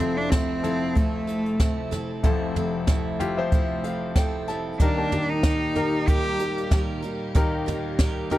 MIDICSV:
0, 0, Header, 1, 6, 480
1, 0, Start_track
1, 0, Key_signature, -1, "major"
1, 0, Tempo, 638978
1, 1680, Time_signature, 4, 2, 24, 8
1, 6296, End_track
2, 0, Start_track
2, 0, Title_t, "Grand piano"
2, 0, Program_c, 0, 0
2, 0, Control_c, 0, 64, 127
2, 0, Note_on_c, 0, 29, 55
2, 0, Note_on_c, 0, 41, 54
2, 0, Note_on_c, 0, 53, 55
2, 0, Note_on_c, 0, 64, 60
2, 0, Note_on_c, 0, 69, 65
2, 444, Note_off_c, 0, 64, 0
2, 446, Note_off_c, 0, 53, 0
2, 449, Note_off_c, 0, 69, 0
2, 474, Note_on_c, 0, 64, 66
2, 475, Note_on_c, 0, 53, 61
2, 478, Note_on_c, 0, 69, 70
2, 1387, Note_off_c, 0, 53, 0
2, 1387, Note_off_c, 0, 64, 0
2, 1389, Note_off_c, 0, 69, 0
2, 1649, Note_off_c, 0, 29, 0
2, 1650, Note_off_c, 0, 41, 0
2, 1678, Note_on_c, 0, 64, 78
2, 1683, Note_on_c, 0, 29, 68
2, 1685, Note_on_c, 0, 53, 71
2, 1686, Note_on_c, 0, 41, 69
2, 1689, Note_on_c, 0, 69, 82
2, 2362, Note_off_c, 0, 64, 0
2, 2365, Note_off_c, 0, 53, 0
2, 2367, Note_off_c, 0, 69, 0
2, 2400, Note_on_c, 0, 64, 77
2, 2401, Note_on_c, 0, 65, 71
2, 2404, Note_on_c, 0, 67, 91
2, 2526, Note_off_c, 0, 64, 0
2, 2527, Note_off_c, 0, 65, 0
2, 2529, Note_off_c, 0, 67, 0
2, 2535, Note_on_c, 0, 76, 83
2, 2537, Note_on_c, 0, 53, 82
2, 2543, Note_on_c, 0, 72, 95
2, 2883, Note_on_c, 0, 77, 58
2, 3105, Note_off_c, 0, 77, 0
2, 3123, Note_on_c, 0, 79, 72
2, 3345, Note_off_c, 0, 79, 0
2, 3366, Note_on_c, 0, 81, 67
2, 3431, Note_off_c, 0, 76, 0
2, 3433, Note_off_c, 0, 53, 0
2, 3436, Note_off_c, 0, 72, 0
2, 3572, Note_off_c, 0, 29, 0
2, 3574, Note_off_c, 0, 41, 0
2, 3587, Note_off_c, 0, 81, 0
2, 3609, Note_on_c, 0, 63, 67
2, 3610, Control_c, 0, 64, 0
2, 3612, Note_on_c, 0, 51, 55
2, 3613, Note_on_c, 0, 67, 58
2, 3614, Note_on_c, 0, 39, 55
2, 3618, Note_on_c, 0, 70, 77
2, 3729, Note_off_c, 0, 67, 0
2, 3731, Note_off_c, 0, 63, 0
2, 3734, Control_c, 0, 64, 127
2, 3736, Note_off_c, 0, 70, 0
2, 3737, Note_on_c, 0, 58, 60
2, 3740, Note_on_c, 0, 67, 58
2, 3743, Note_on_c, 0, 81, 71
2, 4291, Note_off_c, 0, 58, 0
2, 4292, Note_off_c, 0, 67, 0
2, 4293, Note_off_c, 0, 81, 0
2, 4322, Note_on_c, 0, 63, 67
2, 4327, Note_on_c, 0, 67, 66
2, 4329, Note_on_c, 0, 70, 78
2, 5232, Note_off_c, 0, 63, 0
2, 5234, Note_off_c, 0, 67, 0
2, 5235, Note_off_c, 0, 70, 0
2, 5497, Note_off_c, 0, 51, 0
2, 5498, Note_off_c, 0, 39, 0
2, 5523, Note_on_c, 0, 39, 73
2, 5525, Note_on_c, 0, 63, 82
2, 5528, Note_on_c, 0, 67, 73
2, 5530, Note_on_c, 0, 51, 72
2, 5532, Note_on_c, 0, 70, 94
2, 6205, Note_off_c, 0, 63, 0
2, 6207, Note_off_c, 0, 67, 0
2, 6209, Note_off_c, 0, 70, 0
2, 6245, Note_on_c, 0, 63, 85
2, 6248, Note_on_c, 0, 67, 77
2, 6250, Note_on_c, 0, 70, 91
2, 6296, Note_off_c, 0, 39, 0
2, 6296, Note_off_c, 0, 51, 0
2, 6296, Note_off_c, 0, 63, 0
2, 6296, Note_off_c, 0, 67, 0
2, 6296, Note_off_c, 0, 70, 0
2, 6296, End_track
3, 0, Start_track
3, 0, Title_t, "Steel-string acoustic guitar"
3, 0, Program_c, 1, 25
3, 0, Note_on_c, 1, 69, 52
3, 6, Note_on_c, 1, 64, 47
3, 16, Note_on_c, 1, 60, 44
3, 238, Note_off_c, 1, 60, 0
3, 238, Note_off_c, 1, 69, 0
3, 241, Note_off_c, 1, 64, 0
3, 241, Note_on_c, 1, 53, 71
3, 244, Note_on_c, 1, 57, 68
3, 247, Note_on_c, 1, 60, 72
3, 250, Note_on_c, 1, 64, 85
3, 254, Note_on_c, 1, 69, 73
3, 471, Note_off_c, 1, 69, 0
3, 480, Note_off_c, 1, 53, 0
3, 480, Note_on_c, 1, 69, 54
3, 482, Note_off_c, 1, 57, 0
3, 482, Note_off_c, 1, 64, 0
3, 484, Note_off_c, 1, 60, 0
3, 491, Note_on_c, 1, 64, 52
3, 496, Note_on_c, 1, 60, 49
3, 716, Note_off_c, 1, 60, 0
3, 717, Note_on_c, 1, 57, 54
3, 720, Note_off_c, 1, 69, 0
3, 722, Note_off_c, 1, 64, 0
3, 725, Note_on_c, 1, 60, 65
3, 731, Note_on_c, 1, 64, 57
3, 739, Note_on_c, 1, 69, 67
3, 947, Note_off_c, 1, 69, 0
3, 956, Note_on_c, 1, 69, 50
3, 958, Note_off_c, 1, 57, 0
3, 958, Note_off_c, 1, 64, 0
3, 962, Note_off_c, 1, 60, 0
3, 967, Note_on_c, 1, 64, 46
3, 974, Note_on_c, 1, 60, 42
3, 1197, Note_off_c, 1, 60, 0
3, 1198, Note_off_c, 1, 69, 0
3, 1200, Note_on_c, 1, 53, 77
3, 1203, Note_off_c, 1, 64, 0
3, 1204, Note_on_c, 1, 57, 81
3, 1206, Note_on_c, 1, 60, 74
3, 1212, Note_on_c, 1, 64, 92
3, 1212, Note_on_c, 1, 69, 80
3, 1428, Note_off_c, 1, 69, 0
3, 1437, Note_on_c, 1, 69, 60
3, 1438, Note_off_c, 1, 64, 0
3, 1440, Note_off_c, 1, 53, 0
3, 1442, Note_off_c, 1, 57, 0
3, 1443, Note_off_c, 1, 60, 0
3, 1447, Note_on_c, 1, 64, 50
3, 1454, Note_on_c, 1, 60, 44
3, 1677, Note_off_c, 1, 60, 0
3, 1678, Note_off_c, 1, 69, 0
3, 1680, Note_on_c, 1, 53, 74
3, 1684, Note_off_c, 1, 64, 0
3, 1684, Note_on_c, 1, 57, 83
3, 1686, Note_on_c, 1, 60, 80
3, 1691, Note_on_c, 1, 64, 78
3, 1693, Note_on_c, 1, 69, 90
3, 1916, Note_off_c, 1, 69, 0
3, 1920, Note_off_c, 1, 53, 0
3, 1922, Note_off_c, 1, 57, 0
3, 1923, Note_off_c, 1, 60, 0
3, 1923, Note_off_c, 1, 64, 0
3, 1925, Note_on_c, 1, 69, 53
3, 1932, Note_on_c, 1, 64, 49
3, 1942, Note_on_c, 1, 60, 42
3, 2160, Note_off_c, 1, 60, 0
3, 2160, Note_off_c, 1, 64, 0
3, 2162, Note_on_c, 1, 53, 72
3, 2163, Note_off_c, 1, 69, 0
3, 2166, Note_on_c, 1, 57, 71
3, 2169, Note_on_c, 1, 60, 71
3, 2169, Note_on_c, 1, 64, 83
3, 2173, Note_on_c, 1, 69, 81
3, 2396, Note_off_c, 1, 69, 0
3, 2401, Note_off_c, 1, 53, 0
3, 2403, Note_off_c, 1, 57, 0
3, 2405, Note_off_c, 1, 60, 0
3, 2405, Note_off_c, 1, 64, 0
3, 2405, Note_on_c, 1, 69, 57
3, 2415, Note_on_c, 1, 64, 54
3, 2423, Note_on_c, 1, 60, 43
3, 2643, Note_off_c, 1, 69, 0
3, 2646, Note_off_c, 1, 60, 0
3, 2647, Note_on_c, 1, 57, 64
3, 2648, Note_off_c, 1, 64, 0
3, 2655, Note_on_c, 1, 60, 65
3, 2662, Note_on_c, 1, 64, 64
3, 2665, Note_on_c, 1, 69, 75
3, 2875, Note_off_c, 1, 69, 0
3, 2884, Note_off_c, 1, 57, 0
3, 2884, Note_on_c, 1, 69, 58
3, 2886, Note_off_c, 1, 64, 0
3, 2888, Note_off_c, 1, 60, 0
3, 2895, Note_on_c, 1, 64, 53
3, 2905, Note_on_c, 1, 60, 49
3, 3122, Note_off_c, 1, 60, 0
3, 3122, Note_off_c, 1, 69, 0
3, 3123, Note_on_c, 1, 53, 79
3, 3126, Note_off_c, 1, 64, 0
3, 3127, Note_on_c, 1, 57, 81
3, 3131, Note_on_c, 1, 60, 74
3, 3135, Note_on_c, 1, 64, 93
3, 3136, Note_on_c, 1, 69, 87
3, 3354, Note_off_c, 1, 69, 0
3, 3362, Note_off_c, 1, 53, 0
3, 3363, Note_on_c, 1, 69, 56
3, 3364, Note_off_c, 1, 57, 0
3, 3366, Note_off_c, 1, 60, 0
3, 3368, Note_off_c, 1, 64, 0
3, 3377, Note_on_c, 1, 64, 55
3, 3383, Note_on_c, 1, 60, 46
3, 3602, Note_off_c, 1, 69, 0
3, 3604, Note_on_c, 1, 51, 73
3, 3608, Note_off_c, 1, 60, 0
3, 3609, Note_off_c, 1, 64, 0
3, 3609, Note_on_c, 1, 55, 76
3, 3611, Note_on_c, 1, 63, 84
3, 3614, Note_on_c, 1, 67, 94
3, 3616, Note_on_c, 1, 70, 84
3, 3836, Note_off_c, 1, 70, 0
3, 3842, Note_off_c, 1, 51, 0
3, 3845, Note_off_c, 1, 55, 0
3, 3845, Note_on_c, 1, 70, 54
3, 3846, Note_off_c, 1, 63, 0
3, 3846, Note_off_c, 1, 67, 0
3, 3855, Note_on_c, 1, 67, 49
3, 3865, Note_on_c, 1, 63, 41
3, 4083, Note_off_c, 1, 63, 0
3, 4083, Note_off_c, 1, 70, 0
3, 4083, Note_on_c, 1, 51, 76
3, 4088, Note_off_c, 1, 67, 0
3, 4089, Note_on_c, 1, 55, 73
3, 4092, Note_on_c, 1, 63, 84
3, 4095, Note_on_c, 1, 70, 90
3, 4097, Note_on_c, 1, 67, 77
3, 4313, Note_off_c, 1, 70, 0
3, 4322, Note_off_c, 1, 51, 0
3, 4322, Note_on_c, 1, 70, 65
3, 4324, Note_off_c, 1, 67, 0
3, 4325, Note_off_c, 1, 55, 0
3, 4326, Note_off_c, 1, 63, 0
3, 4333, Note_on_c, 1, 67, 58
3, 4343, Note_on_c, 1, 63, 52
3, 4562, Note_off_c, 1, 70, 0
3, 4563, Note_off_c, 1, 63, 0
3, 4565, Note_on_c, 1, 55, 63
3, 4567, Note_off_c, 1, 67, 0
3, 4572, Note_on_c, 1, 63, 66
3, 4576, Note_on_c, 1, 67, 70
3, 4581, Note_on_c, 1, 70, 71
3, 4796, Note_off_c, 1, 70, 0
3, 4803, Note_off_c, 1, 55, 0
3, 4805, Note_on_c, 1, 70, 60
3, 4806, Note_off_c, 1, 67, 0
3, 4807, Note_off_c, 1, 63, 0
3, 4815, Note_on_c, 1, 67, 54
3, 4821, Note_on_c, 1, 63, 48
3, 5037, Note_off_c, 1, 63, 0
3, 5041, Note_on_c, 1, 51, 74
3, 5042, Note_off_c, 1, 67, 0
3, 5043, Note_off_c, 1, 70, 0
3, 5046, Note_on_c, 1, 55, 82
3, 5046, Note_on_c, 1, 63, 81
3, 5051, Note_on_c, 1, 67, 89
3, 5053, Note_on_c, 1, 70, 93
3, 5268, Note_off_c, 1, 70, 0
3, 5277, Note_off_c, 1, 67, 0
3, 5277, Note_on_c, 1, 70, 57
3, 5281, Note_off_c, 1, 51, 0
3, 5284, Note_off_c, 1, 55, 0
3, 5284, Note_off_c, 1, 63, 0
3, 5286, Note_on_c, 1, 67, 50
3, 5294, Note_on_c, 1, 63, 48
3, 5518, Note_off_c, 1, 63, 0
3, 5519, Note_off_c, 1, 70, 0
3, 5519, Note_on_c, 1, 51, 86
3, 5521, Note_off_c, 1, 67, 0
3, 5524, Note_on_c, 1, 55, 81
3, 5527, Note_on_c, 1, 63, 88
3, 5529, Note_on_c, 1, 70, 91
3, 5530, Note_on_c, 1, 67, 90
3, 5746, Note_off_c, 1, 70, 0
3, 5754, Note_off_c, 1, 67, 0
3, 5755, Note_on_c, 1, 70, 57
3, 5760, Note_off_c, 1, 51, 0
3, 5762, Note_off_c, 1, 63, 0
3, 5763, Note_off_c, 1, 55, 0
3, 5763, Note_on_c, 1, 67, 50
3, 5771, Note_on_c, 1, 63, 46
3, 5997, Note_off_c, 1, 67, 0
3, 5998, Note_off_c, 1, 63, 0
3, 5998, Note_off_c, 1, 70, 0
3, 6000, Note_on_c, 1, 51, 77
3, 6002, Note_on_c, 1, 55, 81
3, 6006, Note_on_c, 1, 67, 85
3, 6007, Note_on_c, 1, 63, 78
3, 6013, Note_on_c, 1, 70, 83
3, 6226, Note_off_c, 1, 70, 0
3, 6235, Note_on_c, 1, 70, 58
3, 6236, Note_off_c, 1, 67, 0
3, 6241, Note_off_c, 1, 51, 0
3, 6242, Note_off_c, 1, 55, 0
3, 6244, Note_off_c, 1, 63, 0
3, 6245, Note_on_c, 1, 67, 52
3, 6253, Note_on_c, 1, 63, 49
3, 6296, Note_off_c, 1, 63, 0
3, 6296, Note_off_c, 1, 67, 0
3, 6296, Note_off_c, 1, 70, 0
3, 6296, End_track
4, 0, Start_track
4, 0, Title_t, "Cello"
4, 0, Program_c, 2, 42
4, 0, Note_on_c, 2, 60, 91
4, 129, Note_on_c, 2, 62, 93
4, 140, Note_off_c, 2, 60, 0
4, 223, Note_on_c, 2, 60, 90
4, 234, Note_off_c, 2, 62, 0
4, 715, Note_on_c, 2, 57, 84
4, 726, Note_off_c, 2, 60, 0
4, 1437, Note_off_c, 2, 57, 0
4, 3605, Note_on_c, 2, 62, 88
4, 3974, Note_on_c, 2, 63, 94
4, 3985, Note_off_c, 2, 62, 0
4, 4567, Note_on_c, 2, 67, 105
4, 4578, Note_off_c, 2, 63, 0
4, 5044, Note_off_c, 2, 67, 0
4, 6296, End_track
5, 0, Start_track
5, 0, Title_t, "String section"
5, 0, Program_c, 3, 48
5, 0, Note_on_c, 3, 48, 66
5, 0, Note_on_c, 3, 53, 56
5, 0, Note_on_c, 3, 57, 61
5, 0, Note_on_c, 3, 60, 56
5, 0, Note_on_c, 3, 69, 72
5, 3565, Note_off_c, 3, 57, 0
5, 3565, Note_off_c, 3, 60, 0
5, 3566, Note_off_c, 3, 48, 0
5, 3566, Note_off_c, 3, 53, 0
5, 3568, Note_off_c, 3, 69, 0
5, 3601, Note_on_c, 3, 55, 68
5, 3602, Note_on_c, 3, 51, 65
5, 3602, Note_on_c, 3, 67, 82
5, 3606, Note_on_c, 3, 58, 61
5, 3609, Note_on_c, 3, 46, 71
5, 6296, Note_off_c, 3, 46, 0
5, 6296, Note_off_c, 3, 51, 0
5, 6296, Note_off_c, 3, 55, 0
5, 6296, Note_off_c, 3, 58, 0
5, 6296, Note_off_c, 3, 67, 0
5, 6296, End_track
6, 0, Start_track
6, 0, Title_t, "Drums"
6, 0, Note_on_c, 9, 42, 56
6, 0, Note_on_c, 9, 43, 60
6, 72, Note_off_c, 9, 42, 0
6, 72, Note_off_c, 9, 43, 0
6, 238, Note_on_c, 9, 38, 91
6, 239, Note_on_c, 9, 42, 68
6, 240, Note_on_c, 9, 36, 98
6, 313, Note_off_c, 9, 38, 0
6, 314, Note_off_c, 9, 42, 0
6, 315, Note_off_c, 9, 36, 0
6, 481, Note_on_c, 9, 43, 56
6, 484, Note_on_c, 9, 42, 62
6, 556, Note_off_c, 9, 43, 0
6, 559, Note_off_c, 9, 42, 0
6, 723, Note_on_c, 9, 36, 98
6, 725, Note_on_c, 9, 42, 75
6, 798, Note_off_c, 9, 36, 0
6, 800, Note_off_c, 9, 42, 0
6, 964, Note_on_c, 9, 42, 77
6, 1039, Note_off_c, 9, 42, 0
6, 1096, Note_on_c, 9, 42, 48
6, 1171, Note_off_c, 9, 42, 0
6, 1199, Note_on_c, 9, 38, 94
6, 1200, Note_on_c, 9, 36, 100
6, 1201, Note_on_c, 9, 42, 73
6, 1274, Note_off_c, 9, 38, 0
6, 1275, Note_off_c, 9, 36, 0
6, 1276, Note_off_c, 9, 42, 0
6, 1441, Note_on_c, 9, 42, 60
6, 1443, Note_on_c, 9, 38, 30
6, 1443, Note_on_c, 9, 43, 54
6, 1516, Note_off_c, 9, 42, 0
6, 1518, Note_off_c, 9, 43, 0
6, 1519, Note_off_c, 9, 38, 0
6, 1679, Note_on_c, 9, 42, 78
6, 1681, Note_on_c, 9, 36, 97
6, 1754, Note_off_c, 9, 42, 0
6, 1756, Note_off_c, 9, 36, 0
6, 1924, Note_on_c, 9, 42, 53
6, 1924, Note_on_c, 9, 43, 58
6, 1999, Note_off_c, 9, 42, 0
6, 1999, Note_off_c, 9, 43, 0
6, 2158, Note_on_c, 9, 38, 94
6, 2158, Note_on_c, 9, 42, 76
6, 2162, Note_on_c, 9, 36, 104
6, 2233, Note_off_c, 9, 38, 0
6, 2233, Note_off_c, 9, 42, 0
6, 2237, Note_off_c, 9, 36, 0
6, 2405, Note_on_c, 9, 43, 58
6, 2407, Note_on_c, 9, 42, 62
6, 2480, Note_off_c, 9, 43, 0
6, 2483, Note_off_c, 9, 42, 0
6, 2643, Note_on_c, 9, 42, 72
6, 2645, Note_on_c, 9, 36, 96
6, 2718, Note_off_c, 9, 42, 0
6, 2720, Note_off_c, 9, 36, 0
6, 2886, Note_on_c, 9, 42, 74
6, 2961, Note_off_c, 9, 42, 0
6, 3121, Note_on_c, 9, 38, 96
6, 3122, Note_on_c, 9, 36, 98
6, 3123, Note_on_c, 9, 42, 75
6, 3197, Note_off_c, 9, 36, 0
6, 3197, Note_off_c, 9, 38, 0
6, 3198, Note_off_c, 9, 42, 0
6, 3363, Note_on_c, 9, 42, 60
6, 3365, Note_on_c, 9, 38, 30
6, 3438, Note_off_c, 9, 42, 0
6, 3440, Note_off_c, 9, 38, 0
6, 3604, Note_on_c, 9, 36, 100
6, 3604, Note_on_c, 9, 42, 81
6, 3679, Note_off_c, 9, 36, 0
6, 3680, Note_off_c, 9, 42, 0
6, 3847, Note_on_c, 9, 42, 57
6, 3847, Note_on_c, 9, 43, 62
6, 3922, Note_off_c, 9, 42, 0
6, 3922, Note_off_c, 9, 43, 0
6, 4081, Note_on_c, 9, 38, 100
6, 4081, Note_on_c, 9, 42, 74
6, 4084, Note_on_c, 9, 36, 109
6, 4156, Note_off_c, 9, 38, 0
6, 4157, Note_off_c, 9, 42, 0
6, 4159, Note_off_c, 9, 36, 0
6, 4324, Note_on_c, 9, 43, 56
6, 4327, Note_on_c, 9, 42, 62
6, 4399, Note_off_c, 9, 43, 0
6, 4402, Note_off_c, 9, 42, 0
6, 4565, Note_on_c, 9, 36, 102
6, 4565, Note_on_c, 9, 42, 78
6, 4640, Note_off_c, 9, 42, 0
6, 4641, Note_off_c, 9, 36, 0
6, 4805, Note_on_c, 9, 42, 79
6, 4880, Note_off_c, 9, 42, 0
6, 4941, Note_on_c, 9, 42, 51
6, 5016, Note_off_c, 9, 42, 0
6, 5043, Note_on_c, 9, 36, 110
6, 5044, Note_on_c, 9, 38, 98
6, 5045, Note_on_c, 9, 42, 69
6, 5118, Note_off_c, 9, 36, 0
6, 5119, Note_off_c, 9, 38, 0
6, 5120, Note_off_c, 9, 42, 0
6, 5284, Note_on_c, 9, 42, 62
6, 5359, Note_off_c, 9, 42, 0
6, 5522, Note_on_c, 9, 42, 83
6, 5523, Note_on_c, 9, 36, 107
6, 5597, Note_off_c, 9, 42, 0
6, 5598, Note_off_c, 9, 36, 0
6, 5767, Note_on_c, 9, 42, 55
6, 5767, Note_on_c, 9, 43, 64
6, 5842, Note_off_c, 9, 43, 0
6, 5843, Note_off_c, 9, 42, 0
6, 6000, Note_on_c, 9, 38, 98
6, 6001, Note_on_c, 9, 42, 72
6, 6003, Note_on_c, 9, 36, 106
6, 6075, Note_off_c, 9, 38, 0
6, 6076, Note_off_c, 9, 42, 0
6, 6078, Note_off_c, 9, 36, 0
6, 6243, Note_on_c, 9, 43, 55
6, 6245, Note_on_c, 9, 42, 65
6, 6296, Note_off_c, 9, 42, 0
6, 6296, Note_off_c, 9, 43, 0
6, 6296, End_track
0, 0, End_of_file